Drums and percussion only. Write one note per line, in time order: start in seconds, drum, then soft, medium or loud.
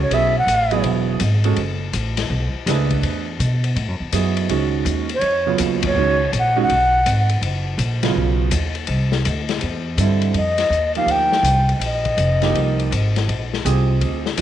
0.11 ride medium
0.48 hi-hat pedal soft
0.48 ride medium
0.71 ride soft
0.84 ride medium
1.20 hi-hat pedal medium
1.20 ride medium
1.44 ride soft
1.56 ride soft
1.93 hi-hat pedal soft
1.93 ride medium
2.17 snare soft
2.17 ride medium
2.67 snare soft
2.67 hi-hat pedal medium
2.67 ride medium
2.90 kick medium
2.90 ride soft
3.03 ride medium
3.40 hi-hat pedal soft
3.40 ride medium
3.64 ride soft
3.76 ride soft
4.13 hi-hat pedal soft
4.13 ride medium
4.37 ride soft
4.49 ride medium
4.86 hi-hat pedal soft
4.86 ride soft
5.09 ride soft
5.21 ride medium
5.58 hi-hat pedal medium
5.58 ride medium
5.83 kick medium
5.83 ride medium
6.33 hi-hat pedal soft
6.33 ride medium
6.70 ride soft
7.06 hi-hat pedal medium
7.06 ride medium
7.29 ride soft
7.43 ride medium
7.79 hi-hat pedal soft
7.79 ride medium
8.03 snare soft
8.03 ride medium
8.51 hi-hat pedal medium
8.51 ride medium
8.75 ride soft
8.87 ride medium
9.12 snare soft
9.25 hi-hat pedal soft
9.25 ride medium
9.49 snare medium
9.49 ride soft
9.61 ride medium
9.98 hi-hat pedal medium
9.98 ride medium
10.22 ride soft
10.34 ride soft
10.58 snare soft
10.58 ride medium
10.72 hi-hat pedal soft
10.95 ride soft
11.08 ride soft
11.32 snare soft
11.44 hi-hat pedal medium
11.44 ride medium
11.69 ride soft
11.81 ride medium
12.05 kick medium
12.05 ride soft
12.18 hi-hat pedal soft
12.18 ride medium
12.42 snare soft
12.42 ride soft
12.55 ride soft
12.80 ride soft
12.92 hi-hat pedal soft
12.92 ride medium
13.16 snare soft
13.16 ride soft
13.29 ride soft
13.54 snare soft
13.66 hi-hat pedal medium
13.66 ride medium
14.01 ride medium
14.26 snare soft
14.37 hi-hat pedal medium
14.37 ride medium